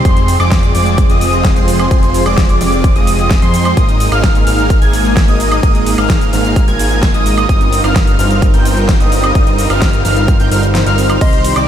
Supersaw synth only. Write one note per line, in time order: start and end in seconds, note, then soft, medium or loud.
0.05 0.37 F3 medium
0.05 0.37 G#3 medium
0.05 0.37 C4 medium
0.05 0.37 G#4 medium
0.05 0.37 C5 loud
0.40 0.72 F3 loud
0.40 0.72 G#3 medium
0.40 0.72 C4 medium
0.40 0.72 G#4 medium
0.40 0.72 D5 loud
0.75 1.07 F3 medium
0.75 1.07 G#3 medium
0.75 1.07 C4 medium
0.75 1.07 G#4 medium
0.75 1.07 D5 loud
1.10 1.53 F3 medium
1.10 1.53 G#3 medium
1.10 1.53 C4 medium
1.10 1.53 G#4 medium
1.10 1.53 D#5 loud
1.56 1.88 F3 medium
1.56 1.88 G#3 medium
1.56 1.88 C4 medium
1.56 1.88 G#4 medium
1.56 1.88 C5 loud
1.91 2.23 F3 medium
1.91 2.23 G#3 medium
1.91 2.23 C4 medium
1.91 2.23 G#4 medium
1.91 2.23 C5 loud
2.26 2.58 F3 medium
2.26 2.58 G#3 medium
2.26 2.58 C4 medium
2.26 2.58 G#4 medium
2.26 2.58 D5 loud
2.61 2.93 F3 medium
2.61 2.93 G#3 medium
2.61 2.93 C4 medium
2.61 2.93 G#4 medium
2.61 2.93 D5 loud
2.96 3.40 F3 medium
2.96 3.40 G#3 medium
2.96 3.40 C4 medium
2.96 3.39 G#4 medium
2.96 3.40 D#5 loud
3.42 3.74 F3 medium
3.42 3.74 G#3 medium
3.42 3.74 C4 medium
3.42 3.74 G#4 medium
3.42 3.74 C5 loud
3.77 4.09 G#3 medium
3.77 4.09 A#3 medium
3.77 4.09 D#4 medium
3.77 4.09 A#4 medium
3.77 4.09 D#5 loud
4.12 4.44 G#3 loud
4.12 4.44 A#3 medium
4.12 4.44 D#4 medium
4.12 4.44 A#4 medium
4.12 4.44 F5 loud
4.47 4.79 G#3 medium
4.47 4.79 A#3 medium
4.47 4.79 D#4 medium
4.47 4.79 A#4 medium
4.47 4.79 F5 loud
4.82 5.26 G#3 medium
4.82 5.26 A#3 medium
4.82 5.26 D#4 medium
4.82 5.26 A#4 medium
4.82 5.26 G#5 loud
5.28 5.60 G#3 medium
5.28 5.61 A#3 medium
5.28 5.60 D#4 medium
5.28 5.60 A#4 medium
5.28 5.60 D#5 loud
5.63 5.95 A#3 medium
5.63 5.95 D#4 medium
5.63 5.95 A#4 medium
5.63 5.95 D#5 loud
5.98 6.30 G#3 loud
5.98 6.30 A#3 medium
5.98 6.30 D#4 medium
5.98 6.30 A#4 medium
5.98 6.30 F5 loud
6.33 6.65 G#3 medium
6.33 6.65 A#3 medium
6.33 6.65 D#4 medium
6.33 6.65 A#4 medium
6.33 6.65 F5 loud
6.68 7.12 G#3 medium
6.68 7.12 A#3 medium
6.68 7.12 D#4 medium
6.68 7.12 A#4 medium
6.68 7.12 G#5 loud
7.14 7.46 G#3 medium
7.14 7.46 A#3 medium
7.14 7.46 D#4 medium
7.14 7.46 A#4 medium
7.14 7.46 D#5 loud
7.49 7.81 G3 medium
7.49 7.81 D#4 medium
7.49 7.81 A#4 medium
7.49 7.81 D#5 loud
7.84 8.16 G3 medium
7.84 8.16 C4 medium
7.84 8.16 D#4 medium
7.84 8.16 A#4 medium
7.84 8.16 F5 loud
8.19 8.51 G3 medium
8.19 8.51 C4 medium
8.19 8.51 D#4 medium
8.19 8.51 A#4 medium
8.19 8.51 F5 medium
8.54 8.98 G3 medium
8.54 8.98 C4 medium
8.54 8.98 D#4 medium
8.54 8.98 A#4 medium
8.54 8.98 G5 loud
9.00 9.33 G3 medium
9.00 9.33 C4 medium
9.00 9.32 D#4 medium
9.00 9.32 A#4 medium
9.00 9.33 D#5 loud
9.35 9.67 G3 medium
9.35 9.67 C4 medium
9.35 9.67 D#4 medium
9.35 9.67 A#4 medium
9.35 9.67 D#5 loud
9.70 10.02 G3 loud
9.70 10.02 C4 medium
9.70 10.02 D#4 medium
9.70 10.02 A#4 medium
9.70 10.02 F5 loud
10.05 10.37 G3 medium
10.05 10.37 C4 medium
10.05 10.37 D#4 medium
10.05 10.37 A#4 medium
10.05 10.37 F5 loud
10.40 10.49 G3 medium
10.40 10.49 C4 medium
10.40 10.49 D#4 medium
10.40 10.49 A#4 medium
10.40 10.49 G5 loud
10.51 10.63 G3 loud
10.51 10.63 C4 medium
10.51 10.63 D#4 medium
10.51 10.63 A#4 medium
10.51 10.63 F5 loud
10.86 11.18 G3 medium
10.86 11.19 C4 medium
10.86 11.18 D#4 medium
10.86 11.19 A#4 medium
10.86 11.19 F5 medium
11.21 11.53 D#3 medium
11.21 11.53 G3 medium
11.21 11.53 C4 medium
11.21 11.53 G4 medium
11.21 11.53 C5 loud
11.56 11.68 D#3 medium
11.56 11.68 G3 medium
11.56 11.68 C4 medium
11.56 11.68 G4 medium
11.56 11.68 D5 loud